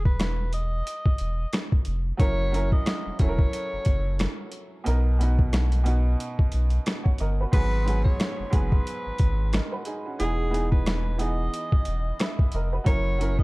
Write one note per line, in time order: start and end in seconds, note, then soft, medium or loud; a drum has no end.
0.00 0.83 E1 loud
0.05 0.50 B4 medium
0.05 kick medium
0.20 cross-stick medium
0.20 snare loud
0.20 closed hi-hat medium
0.53 1.68 D#5 medium
0.53 closed hi-hat medium
0.87 closed hi-hat loud
1.06 kick medium
1.18 1.46 E1 medium
1.18 closed hi-hat medium
1.53 cross-stick medium
1.53 snare loud
1.53 closed hi-hat medium
1.72 kick medium
1.85 2.12 F1 medium
1.85 closed hi-hat medium
2.17 2.71 F#1 loud
2.17 2.43 F#3 medium
2.17 2.43 C#4 medium
2.17 2.44 E4 medium
2.17 2.44 A#4 loud
2.17 2.69 C#5 loud
2.17 kick loud
2.17 closed hi-hat medium
2.52 3.00 F#3 medium
2.52 3.00 C#4 medium
2.52 3.01 E4 medium
2.52 3.01 A#4 loud
2.52 closed hi-hat medium
2.72 3.17 D#5 medium
2.72 kick medium
2.86 cross-stick medium
2.86 snare loud
2.86 closed hi-hat medium
3.06 3.12 E1 soft
3.19 3.46 E1 loud
3.19 4.12 F#3 medium
3.19 4.12 C#4 medium
3.19 4.13 E4 medium
3.19 3.28 A4 medium
3.19 4.35 C#5 medium
3.19 kick loud
3.19 closed hi-hat medium
3.29 4.16 A#4 loud
3.39 kick loud
3.53 closed hi-hat loud
3.73 3.78 F#1 medium
3.85 4.27 F#1 medium
3.85 kick medium
3.85 closed hi-hat medium
4.19 cross-stick medium
4.19 snare loud
4.19 closed hi-hat medium
4.52 closed hi-hat medium
4.84 6.16 B1 loud
4.84 5.09 B2 medium
4.84 5.10 B3 medium
4.84 5.10 D#4 medium
4.84 5.11 A#4 medium
4.84 closed hi-hat medium
5.19 5.67 B2 medium
5.19 5.67 B3 medium
5.19 5.68 D#4 medium
5.19 5.68 F#4 medium
5.19 closed hi-hat medium
5.39 kick medium
5.53 cross-stick medium
5.53 snare medium
5.53 closed hi-hat medium
5.72 closed hi-hat medium
5.84 6.77 B2 medium
5.84 6.78 B3 medium
5.84 6.78 D#4 medium
5.84 6.79 F#4 loud
5.84 closed hi-hat medium
6.20 closed hi-hat loud
6.39 kick medium
6.52 6.79 B1 medium
6.52 closed hi-hat medium
6.70 closed hi-hat medium
6.86 cross-stick medium
6.86 snare loud
6.86 closed hi-hat medium
7.04 7.18 C#5 medium
7.04 7.18 F#5 medium
7.04 kick medium
7.18 7.46 G1 medium
7.18 7.39 A#4 medium
7.18 7.38 D#5 medium
7.18 closed hi-hat medium
7.41 7.72 F#4 medium
7.41 7.71 B4 medium
7.52 8.05 G#1 loud
7.52 7.77 G#2 medium
7.52 7.77 F#3 medium
7.52 7.78 B3 medium
7.52 7.78 G#4 medium
7.52 8.03 B4 loud
7.52 kick loud
7.52 closed hi-hat medium
7.52 crash loud
7.85 8.33 G#2 medium
7.85 8.34 F#3 medium
7.85 8.34 B3 medium
7.85 8.35 G#4 medium
7.85 closed hi-hat medium
8.04 8.49 C#5 medium
8.04 kick medium
8.20 cross-stick medium
8.20 snare medium
8.20 closed hi-hat medium
8.39 8.45 F#1 soft
8.50 8.79 F#1 loud
8.50 9.44 G#2 medium
8.50 9.44 F#3 medium
8.50 9.45 B3 medium
8.50 9.46 G#4 loud
8.50 9.69 B4 medium
8.50 kick loud
8.50 closed hi-hat medium
8.72 kick loud
8.87 closed hi-hat loud
9.06 9.12 G#1 soft
9.18 9.60 G#1 medium
9.18 kick medium
9.18 closed hi-hat medium
9.53 9.73 A#4 medium
9.53 9.72 D#5 medium
9.53 cross-stick medium
9.53 snare loud
9.53 closed hi-hat medium
9.72 9.86 F#4 medium
9.72 9.86 B4 medium
9.85 10.05 D#4 medium
9.85 10.04 G#4 medium
9.85 closed hi-hat medium
10.06 10.37 C#4 medium
10.06 10.37 F#4 medium
10.19 11.49 E1 loud
10.19 10.44 E3 medium
10.19 10.44 B3 medium
10.19 10.45 D#4 medium
10.19 10.69 G#4 loud
10.19 10.45 G#4 loud
10.19 closed hi-hat medium
10.50 10.99 E3 medium
10.50 10.99 B3 medium
10.50 11.00 D#4 medium
10.50 11.00 G#4 loud
10.54 closed hi-hat medium
10.72 11.16 B4 medium
10.72 kick medium
10.86 cross-stick medium
10.86 snare loud
10.86 closed hi-hat medium
11.18 12.11 E3 medium
11.18 12.12 B3 medium
11.18 12.12 D#4 medium
11.18 12.13 G#4 medium
11.18 12.35 D#5 medium
11.18 closed hi-hat medium
11.54 closed hi-hat loud
11.72 kick loud
11.85 12.12 E1 medium
11.85 closed hi-hat medium
12.19 12.51 B4 medium
12.19 12.51 E5 medium
12.19 cross-stick medium
12.19 snare loud
12.19 closed hi-hat medium
12.39 kick medium
12.52 12.79 F1 medium
12.52 12.72 A#4 medium
12.52 12.72 D#5 medium
12.52 closed hi-hat medium
12.73 13.04 F#4 medium
12.73 13.04 B4 medium
12.84 13.38 F#1 loud
12.84 13.09 F#3 medium
12.84 13.10 C#4 medium
12.84 13.11 E4 medium
12.84 13.11 A#4 loud
12.84 13.36 C#5 loud
12.84 kick loud
12.84 closed hi-hat medium
13.18 13.43 F#3 medium
13.18 13.43 C#4 medium
13.18 13.43 E4 medium
13.18 13.43 A#4 loud
13.18 closed hi-hat medium
13.39 13.43 D#5 medium
13.39 kick medium